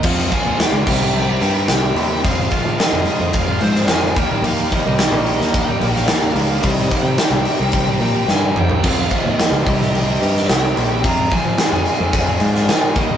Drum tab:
CC |x-----x---------|----------------|----------------|----------------|
HH |--o-o-----o-o-o-|o-o-o-o-o-o-o-o-|o-o-o-o-o-o-o-o-|o-o-o-o-o-o-----|
SD |-o--o-------o---|----o------oo---|----o--o---oo---|-o--o-------o---|
T2 |----------------|----------------|----------------|--------------o-|
FT |----------------|----------------|----------------|---------------o|
BD |o-o---o---------|o-o-----o-----o-|--o-----o-------|o-o-----o-------|

CC |x---------------|----------------|
HH |--o-o-o-o-o-o-o-|o-o-o-o-o-o-o-o-|
SD |----o--o---oo---|----o------oo---|
T2 |----------------|----------------|
FT |----------------|----------------|
BD |o-o---o---------|o-o-----o-----o-|